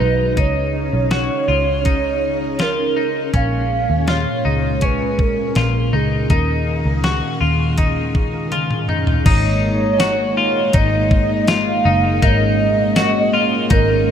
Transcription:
Already playing: F#3 G#3 D#4 B4 A#5
0.00 B1 D#4
0.37 C#2 C#3 C#4 D#4 G#4 C#5 F5, kick, closed hi-hat
0.93 B1
1.11 F#4, snare, closed hi-hat
1.48 C#2 F4
1.85 D#4, kick, closed hi-hat
2.59 F4 A#4, snare, closed hi-hat
2.96 D#4
3.34 A#1 A#2 G#3 C#4 F5, kick, closed hi-hat
3.90 D#2
4.07 F4 C#5, snare, closed hi-hat
4.45 C#2 D#4
4.81 C#4 B4, kick, closed hi-hat
5.19 A#4, kick
5.55 A#1 F4, snare, closed hi-hat
5.93 C#2 D#4 G#4
6.30 D#2 D#3 D#4 G#4 A#4 F5, kick, closed hi-hat
6.85 C#2
7.04 F#4, snare, closed hi-hat
7.41 D#2 F4
7.78 D#4, kick, closed hi-hat
8.15 kick
8.52 F4, closed hi-hat, high tom
8.71 mid tom
8.89 D#4, mid tom
9.07 floor tom
9.26 G#1 G#3 A#3 D#4 C#5, kick, closed hi-hat, crash
9.93 D#5
9.98 F#4 G#5, snare, closed hi-hat, tambourine
10.03 A#5
10.37 F4
10.73 G#1 D#4 D#5, kick, closed hi-hat
11.11 kick
11.48 F4 F5, snare, closed hi-hat, tambourine
11.85 F#1 D#4
12.22 G#1 C#4 D#4 A#4 D#5, kick, closed hi-hat
12.27 C#5
12.32 D#5
12.96 F#4, snare, closed hi-hat, tambourine
13.33 F4
13.70 G#1 D#4 A#4, kick, closed hi-hat

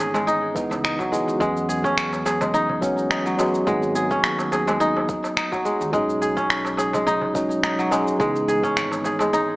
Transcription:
Already playing: G#1 E3 G#3 B3 C#4 D#4
0.00 G#4, cabasa
0.14 G#3, darbuka tek, cabasa
0.27 D#4, cabasa
0.55 E3 G#3 B3 D#4, kick, darbuka ka, cabasa
0.71 C#2, darbuka tek, cabasa
0.84 D#4, finger snap, cabasa
0.99 F#3, kick, darbuka ka, cabasa
1.11 E3 G#3 B3 F#4, cabasa
1.28 C#2, cabasa
1.38 E2 F#3 G#3 B3, kick, cabasa
1.42 C#4
1.57 cabasa
1.69 G#4, cabasa
1.84 C#4, kick, darbuka ka, cabasa
1.98 finger snap, cabasa
2.13 darbuka tek, cabasa
2.26 G#4, darbuka tek, cabasa
2.41 G#3, darbuka tek, darbuka dum, cabasa
2.54 D#4, cabasa
2.69 darbuka dum
2.81 F#3 G#3 B3 C#4, kick, darbuka ka, cabasa
2.98 cabasa
3.10 D#4, finger snap, cabasa
3.26 F#3, cabasa
3.37 F#3 G#3 B3 F#4, darbuka tek, cabasa
3.55 cabasa
3.65 G#1 F#3 G#3 A#3 B3 D#4, kick, cabasa
3.83 cabasa
3.95 G#4, cabasa
4.11 C#4, kick, darbuka ka, cabasa
4.24 D#2, finger snap, cabasa
4.39 darbuka tek, cabasa
4.52 G#4, darbuka ka, darbuka tek, cabasa
4.67 G#3, darbuka tek, cabasa
4.80 D#4, cabasa
4.97 darbuka tek
5.09 kick, darbuka ka, cabasa
5.24 darbuka tek, cabasa
5.37 D#4, finger snap, cabasa
5.52 F#3, kick, darbuka ka, cabasa
5.65 G#3, cabasa
5.81 D#2, cabasa
5.91 B1 F#3 G#3 C#4 D#4, kick, cabasa
6.10 cabasa
6.22 G#4, cabasa
6.37 C#4, kick, darbuka ka, cabasa
6.50 finger snap, cabasa
6.65 darbuka tek, cabasa
6.77 G#4, darbuka tek, cabasa
6.93 G#3, darbuka tek, darbuka dum, cabasa
7.07 D#4, cabasa
7.21 darbuka dum
7.34 F#3 G#3 C#4 D#4, kick, darbuka ka, cabasa
7.51 cabasa
7.63 D#4, finger snap, cabasa
7.79 F#3, cabasa
7.90 F#3 G#3 C#4 G#4, darbuka tek, cabasa
8.08 cabasa
8.18 C#2 E3 G#3 B3, kick, cabasa
8.22 D#4
8.36 cabasa
8.48 G#4, cabasa
8.63 C#4, kick, darbuka ka, cabasa
8.76 G#1, finger snap, cabasa
8.92 darbuka tek, cabasa
9.04 G#4, darbuka ka, darbuka tek, cabasa
9.19 G#3, darbuka tek, cabasa
9.33 D#4, cabasa

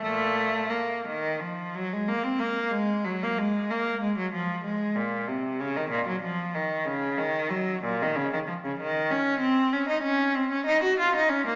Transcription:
0.02 A#2 A3
0.70 A#3
1.07 D#3
1.40 F3
1.75 F#3
1.93 G#3
2.08 A#3
2.24 C4
2.39 A#3
2.71 G#3
3.05 F#3
3.23 A#3
3.38 G#3
3.71 A#3
4.02 G#3
4.18 F#3
4.33 F3
4.64 G#3
4.95 A#2
5.28 C3
5.60 C#3
5.76 D#3
5.90 A#2
6.08 F#3
6.23 F3
6.55 D#3
6.85 C#3
7.17 D#3
7.50 F#3
7.83 A#2
8.02 D#3
8.16 C#3
8.33 D#3
8.47 F3
8.65 C#3
8.80 D#3
9.11 C#4
9.40 C4
9.73 C#4
9.89 D#4
10.03 C#4
10.35 C4
10.51 C#4
10.66 D#4
10.83 F#4
10.99 F4
11.16 D#4
11.29 C#4
11.46 A#3

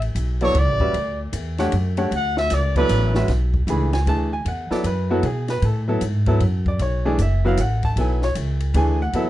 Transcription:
Already playing: A1
0.02 ride
0.15 B1, hi-hat pedal, ride
0.41 F#3 B3 E4 A4 C#5 D5, ride
0.54 C#2, ride
0.59 D5
0.68 A1
0.80 F#1 G3 C#4 F#4 B4 E5, kick
0.94 D2, ride
1.33 E2, hi-hat pedal, ride
1.58 A3 D4 G4 C#5 F#5, snare, ride
1.72 F#2, ride
1.97 A3 D4 G4 C#5 F#5, ride
2.11 D2, ride
2.16 F#5
2.37 E5, snare
2.50 C#2 D5, snare, hi-hat pedal, ride
2.76 F#3 B3 E4 A4 B4 D5, kick, ride
2.89 A1, hi-hat pedal, ride
3.15 G#3 C#4 F#4 B4 E5, snare
3.28 B1, snare, ride
3.54 kick
3.67 C#2 E3 A3 D4 G#4 B5, hi-hat pedal, ride
3.93 G#5, snare, ride
4.06 D2 E3 A3 D4 G#4 A5, ride
4.33 G#5
4.45 E2 F#5, ride
4.71 F#3 B3 E4 A4 D5, muted upright bass stroke, snare
4.84 F#2 B4, hi-hat pedal, ride
5.10 F#3 B3 E4 F#4 A4
5.23 B2 G#4, ride
5.48 B4, snare, ride
5.62 A2 A4, ride
5.88 F#3 B3 E4 A4
6.01 G#2, hi-hat pedal, ride
6.26 F#3 B3 E4 A4, kick, ride
6.40 F#2, ride
6.66 D5, kick
6.79 B1 C#5, ride
7.05 E3 A3 D4 G#4 D5
7.19 F#1 E5, hi-hat pedal, ride
7.45 F#3 B3 E4 F#4 F5
7.57 A1 F#5, hi-hat pedal, ride
7.83 A5, kick, ride
7.96 B1 F#3 B3 E4 A4, ride
8.00 G#5
8.22 C#5, snare
8.35 C#2, hi-hat pedal, ride
8.60 ride
8.74 D2 E3 A3 D4 G#4 G#5, ride
9.02 F#5
9.13 E2 F#3 B3 E4 A4 E5, ride

